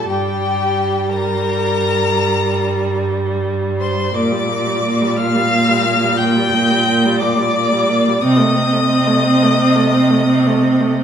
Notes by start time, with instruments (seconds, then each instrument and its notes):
0.07 cello G2, viola G3, violin G4 G5
1.09 violin A#4 A#5
3.80 violin C5 C6
4.13 cello A#2, viola A#3, violin D5 D6
4.32 viola G3
4.49 viola A#3
4.66 viola G3
4.85 viola A#3
5.02 viola G3
5.17 viola A#3, violin F5 F6
5.36 viola G3
5.52 viola A#3
5.69 viola G3
5.86 viola A#3
6.04 viola G3
6.16 viola A#3, violin G5 G6
6.37 viola G3
6.54 viola A#3
6.71 viola G3
6.88 viola A#3
7.05 viola G3
7.18 viola A#3, violin D5 D6
7.38 viola G3
7.56 viola A#3
7.73 viola G3
7.90 viola A#3
8.08 viola G3
8.21 cello C3, viola C4, violin D#5 D#6
8.39 viola A3
8.56 viola C4
8.73 viola A3
8.90 viola C4
9.07 viola A3
9.25 viola C4
9.43 viola A3
9.59 viola C4
9.76 viola A3
9.94 viola C4
10.11 viola A3
10.28 viola C4
10.47 viola A3
10.63 viola C4
10.81 viola A3
10.99 viola C4